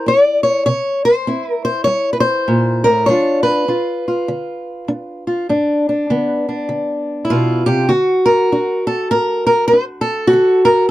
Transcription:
Already playing: E4
0.06 C4 D5
0.43 C#5
0.66 C3 C#5
1.05 C5
1.27 C4 E4
1.51 A#4
1.65 C5
1.84 G3 C#5
2.13 B4
2.20 C5
2.48 A#2
2.84 A2 A#4
3.06 G3 D4 C#5
3.11 F4
3.43 B4
3.68 D4 F4
4.08 F4
4.28 D3
4.88 D4
5.27 F4
5.49 G2 D4
5.89 D4
6.10 D3 B3
6.49 D4
6.69 D3
7.25 E4
7.30 B2 F4
7.66 C3 G4
7.89 D3 F#4
8.26 A#4
8.52 D4 F#4
8.87 A4
9.11 A2 A#4
9.47 A#4
9.68 C5
9.73 D4
10.01 A4
10.27 F#4
10.33 D3
10.65 A#4

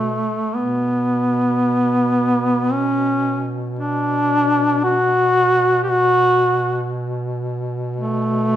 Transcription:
Already playing: B2 A3
0.56 B2 B3
2.72 C#4
3.79 D4
4.84 F#4
5.83 G4
5.90 F#4
7.97 A3

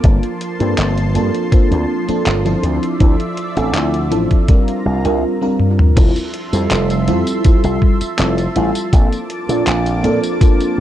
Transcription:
Already playing: A#3
0.03 G1 F3 A#3 C4 D4 F4 A4 A5 C6, kick, closed hi-hat
0.23 closed hi-hat
0.41 closed hi-hat
0.59 G2 A#3 C4 D4 F4 A4, closed hi-hat
0.78 G1, clap, closed hi-hat
0.98 closed hi-hat
1.14 G2 A#3 C4 D4 F4 A4, closed hi-hat
1.34 closed hi-hat
1.52 A#3 C4 D4 F4 A4, muted slap bass stroke, kick, closed hi-hat
1.71 D2, closed hi-hat
2.08 A#3 C4 D4 F4 A4, muted slap bass stroke, closed hi-hat
2.26 G1, clap, closed hi-hat
2.45 F3 C4 D4 E4 A4, closed hi-hat
2.63 D2 D5 E5, closed hi-hat
2.83 closed hi-hat
2.99 D2 F3 C4 D4 E4 A4, kick, closed hi-hat
3.20 closed hi-hat
3.37 closed hi-hat
3.56 A1 F3 C4 D4 E4 A4, closed hi-hat
3.74 D2, clap, closed hi-hat
3.94 closed hi-hat
4.10 A1 F3 C4 D4 E4 A4, closed hi-hat
4.31 kick, closed hi-hat
4.48 G3 C4 D4 F4 A#4 A#5, kick, closed hi-hat
4.68 closed hi-hat
4.85 C2
5.04 C2 G3 C4 D4 F4 A#4, closed hi-hat
5.41 G3 C4 D4 F4 A#4
5.59 high tom
5.79 mid tom
5.95 F1 F3 G3 C4 E4 F4 A4 E5 A5 C6, kick, closed hi-hat, tambourine, crash
6.16 closed hi-hat, tambourine
6.34 closed hi-hat
6.52 F2 G3 C4 E4 F4 A4, closed hi-hat, tambourine
6.71 F1, clap, closed hi-hat, tambourine
6.90 closed hi-hat, tambourine
7.07 F2 G3 C4 E4 F4 A4, closed hi-hat
7.27 closed hi-hat, tambourine
7.44 G3 C4 E4 F4 A4, muted slap bass stroke, kick, closed hi-hat, tambourine
7.64 C2, closed hi-hat, tambourine
7.82 kick
8.01 muted slap bass stroke, closed hi-hat, tambourine
8.18 F1 G3 C4 E4 F4 A4, clap, closed hi-hat, tambourine
8.38 closed hi-hat, tambourine
8.55 A1 G3 C4 E4 F4 A4, closed hi-hat
8.75 closed hi-hat, tambourine
8.92 A#1 A#3 C4 D4 F4 A4 D6, kick, closed hi-hat, tambourine
9.13 closed hi-hat, tambourine
9.30 closed hi-hat
9.49 A#2 A#3 C4 D4 F4 A4, closed hi-hat, tambourine
9.67 A#1, clap, closed hi-hat, tambourine
9.86 closed hi-hat, tambourine
10.03 A#2 A#3 C4 D4 F4 A4, closed hi-hat
10.24 closed hi-hat, tambourine
10.40 A#3 C4 D4 F4 A4, kick, closed hi-hat, tambourine
10.61 closed hi-hat, tambourine

